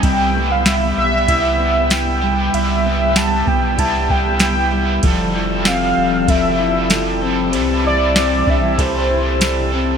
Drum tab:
RD |x-x-x-x-|x-x-x-x-|x-x-x-x-|x-x-x-x-|
TB |--x---x-|--x---x-|--x---x-|--x---x-|
SD |--o---o-|--o---o-|--o---o-|--o---o-|
BD |o---o---|---ooo--|o---o---|---oo---|